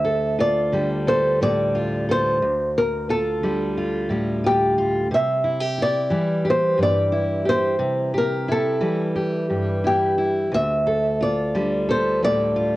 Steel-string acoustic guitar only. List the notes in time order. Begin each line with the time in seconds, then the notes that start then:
Already playing: D2
0.05 A4
0.39 F4
0.72 D3 G3
1.07 A4
1.41 A2 G3
1.75 F4
2.09 A4
2.42 D2
3.09 F4
3.43 D3 G3
3.77 F4
4.09 A2 G3
4.44 F4
4.78 F4
5.11 C3
5.44 E4
5.60 G4
5.78 E4
6.10 E3 G3
6.45 G4
6.78 G2 G3
7.12 E4
7.45 G4
7.79 C3
8.14 G4
8.49 E4
8.81 E3 G3
9.16 G4
9.50 G2 G3
9.84 E4
10.18 E4
10.52 D2
10.87 A4
11.20 F4
11.54 D3 G3
11.89 A4
12.22 A2 G3
12.56 F4